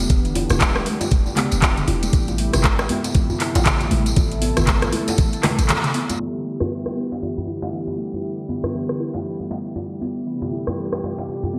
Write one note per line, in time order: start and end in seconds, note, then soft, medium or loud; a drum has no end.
0.00 2.09 D3 medium
0.00 6.16 G3 medium
0.00 2.09 B3 medium
0.00 4.13 G4 medium
0.00 djembe tone medium
0.10 0.46 E1 loud
0.10 0.24 E3 medium
0.10 2.11 D4 medium
0.10 kick loud
0.10 closed hi-hat medium
0.10 tambourine medium
0.10 low conga medium
0.25 0.34 D3 medium
0.25 closed hi-hat soft
0.25 tambourine soft
0.35 0.50 E4 medium
0.35 open hi-hat medium
0.35 djembe tone medium
0.50 0.78 D1 medium
0.50 0.56 A3 medium
0.50 cross-stick medium
0.50 closed hi-hat soft
0.50 mid tom medium
0.50 tambourine medium
0.50 djembe bass medium
0.60 0.69 E3 medium
0.60 kick medium
0.60 clap loud
0.60 closed hi-hat medium
0.60 tambourine medium
0.60 djembe tone medium
0.60 high conga medium
0.75 0.84 E1 medium
0.75 cross-stick medium
0.75 tambourine soft
0.86 1.01 A3 medium
0.86 open hi-hat medium
0.86 high conga medium
1.01 closed hi-hat soft
1.01 tambourine medium
1.01 djembe slap medium
1.01 djembe tone medium
1.11 1.24 E1 medium
1.11 kick loud
1.11 closed hi-hat medium
1.11 tambourine medium
1.11 high conga medium
1.26 tambourine soft
1.26 djembe tone medium
1.36 1.51 B3 medium
1.36 clap medium
1.36 open hi-hat medium
1.36 mid tom medium
1.36 djembe slap medium
1.36 high conga loud
1.52 1.85 E1 medium
1.52 closed hi-hat soft
1.52 tambourine medium
1.62 1.77 E3 medium
1.62 kick loud
1.62 clap loud
1.62 closed hi-hat medium
1.62 tambourine medium
1.62 djembe tone medium
1.62 low conga medium
1.77 1.87 D3 medium
1.77 closed hi-hat soft
1.77 mid tom medium
1.77 tambourine soft
1.88 2.09 E1 medium
1.88 2.02 E4 medium
1.88 open hi-hat medium
1.88 djembe tone medium
2.03 2.08 A3 medium
2.03 closed hi-hat soft
2.03 tambourine medium
2.03 high conga medium
2.13 2.49 A1 medium
2.13 6.16 C3 medium
2.13 2.21 E3 medium
2.13 6.16 A3 medium
2.13 6.16 E4 medium
2.13 kick loud
2.13 closed hi-hat medium
2.13 tambourine medium
2.28 closed hi-hat soft
2.28 tambourine soft
2.28 djembe tone medium
2.38 2.53 A3 medium
2.38 open hi-hat medium
2.53 2.81 G1 loud
2.53 cross-stick medium
2.53 closed hi-hat soft
2.53 mid tom medium
2.53 tambourine medium
2.53 djembe tone medium
2.53 djembe bass medium
2.64 kick loud
2.64 clap loud
2.64 closed hi-hat medium
2.64 tambourine medium
2.64 high conga loud
2.79 2.88 A1 medium
2.79 cross-stick medium
2.79 tambourine soft
2.79 djembe slap medium
2.89 3.03 B3 medium
2.89 open hi-hat medium
2.89 high conga medium
2.89 djembe tone medium
3.04 closed hi-hat soft
3.04 tambourine medium
3.04 djembe slap medium
3.15 3.27 A1 medium
3.15 3.29 E3 medium
3.15 kick loud
3.15 closed hi-hat medium
3.15 tambourine medium
3.15 high conga medium
3.15 djembe tone medium
3.30 3.39 D3 medium
3.30 tambourine soft
3.30 djembe bass medium
3.40 3.55 E4 medium
3.40 clap medium
3.40 open hi-hat medium
3.55 3.88 A1 medium
3.55 3.61 A3 medium
3.55 closed hi-hat soft
3.55 tambourine medium
3.55 djembe slap loud
3.55 djembe tone medium
3.66 3.74 E3 medium
3.66 kick medium
3.66 clap loud
3.66 closed hi-hat medium
3.66 mid tom medium
3.66 tambourine medium
3.80 closed hi-hat soft
3.80 tambourine soft
3.80 djembe tone medium
3.91 4.13 A1 medium
3.91 4.05 A3 medium
3.91 open hi-hat medium
3.91 mid tom medium
3.91 high conga medium
4.06 closed hi-hat soft
4.06 tambourine medium
4.16 4.53 A1 loud
4.16 6.18 A4 medium
4.16 kick loud
4.16 closed hi-hat medium
4.16 tambourine medium
4.16 djembe tone medium
4.16 low conga medium
4.32 closed hi-hat soft
4.32 tambourine soft
4.42 4.56 B3 medium
4.42 open hi-hat medium
4.42 djembe tone medium
4.57 4.84 G1 medium
4.57 cross-stick medium
4.57 closed hi-hat soft
4.57 mid tom medium
4.57 tambourine medium
4.57 djembe bass loud
4.57 low conga medium
4.67 4.82 E3 medium
4.67 kick loud
4.67 clap loud
4.67 closed hi-hat medium
4.67 tambourine medium
4.67 high conga loud
4.82 4.91 A1 medium
4.82 4.92 D3 medium
4.82 cross-stick medium
4.82 closed hi-hat soft
4.82 tambourine soft
4.82 djembe tone medium
4.92 5.07 E4 medium
4.92 open hi-hat medium
4.92 high conga medium
5.08 5.14 A3 medium
5.08 closed hi-hat soft
5.08 tambourine medium
5.08 djembe slap medium
5.08 djembe tone medium
5.18 5.31 A1 medium
5.18 5.26 E3 medium
5.18 kick loud
5.18 closed hi-hat medium
5.18 tambourine medium
5.18 high conga medium
5.33 closed hi-hat soft
5.33 tambourine soft
5.43 5.58 A3 medium
5.43 cross-stick medium
5.43 clap medium
5.43 open hi-hat medium
5.43 mid tom medium
5.43 djembe slap medium
5.43 djembe tone medium
5.43 high conga medium
5.43 low conga medium
5.59 5.69 A1 medium
5.59 closed hi-hat soft
5.59 tambourine medium
5.69 clap loud
5.69 closed hi-hat medium
5.69 tambourine medium
5.69 djembe tone medium
5.69 low conga loud
5.84 closed hi-hat soft
5.84 mid tom medium
5.84 tambourine soft
5.94 6.08 B3 medium
5.94 open hi-hat medium
6.09 closed hi-hat soft
6.09 tambourine medium
6.09 high conga medium
6.09 djembe tone medium
6.20 10.23 D3 medium
6.20 6.28 E3 medium
6.20 11.59 G3 medium
6.20 10.23 B3 medium
6.20 10.23 E4 medium
6.20 10.23 G4 medium
6.20 djembe tone medium
6.45 6.60 A3 medium
6.60 cross-stick medium
6.60 djembe tone medium
6.60 djembe bass medium
6.86 cross-stick medium
6.86 djembe slap medium
6.86 djembe tone medium
6.96 7.10 B3 medium
7.12 djembe slap medium
7.22 7.36 E3 medium
7.22 djembe tone medium
7.37 7.46 D3 medium
7.37 djembe bass medium
7.47 7.62 E4 medium
7.47 djembe tone medium
7.62 7.68 A3 medium
7.62 djembe slap loud
7.73 7.81 E3 medium
7.87 djembe tone medium
7.98 8.12 A3 medium
8.14 djembe tone medium
8.49 8.62 B3 medium
8.49 djembe tone medium
8.64 cross-stick medium
8.64 djembe bass medium
8.74 8.89 E3 medium
8.74 djembe tone medium
8.89 8.99 D3 medium
8.89 cross-stick medium
9.00 9.14 E4 medium
9.14 9.20 A3 medium
9.14 djembe slap medium
9.14 djembe tone medium
9.25 9.33 E3 medium
9.40 djembe tone medium
9.51 9.65 A3 medium
9.51 djembe slap medium
9.76 djembe tone medium
10.01 10.15 B3 medium
10.01 djembe tone medium
10.26 11.59 C3 medium
10.26 10.41 E3 medium
10.26 11.59 A3 medium
10.26 11.59 E4 medium
10.26 11.59 G4 medium
10.42 10.51 D3 medium
10.42 djembe tone medium
10.52 10.67 E4 medium
10.67 10.73 A3 medium
10.67 cross-stick medium
10.67 djembe tone medium
10.67 djembe bass medium
10.78 10.86 E3 medium
10.93 cross-stick medium
10.93 djembe slap medium
11.03 11.17 A3 medium
11.03 djembe tone medium
11.18 djembe slap medium
11.28 djembe tone medium
11.43 djembe bass medium
11.54 11.59 B3 medium